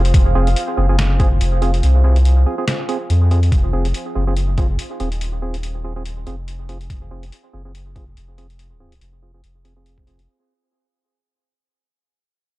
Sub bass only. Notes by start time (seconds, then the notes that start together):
Already playing: F1
0.14 F1
0.77 F#1
1.41 F1
1.83 C2
3.10 F2
3.52 F1
4.16 F#1
5.00 D#1
6.27 F1
6.90 F1
7.54 F#1
8.17 F1
9.01 F1
9.44 F1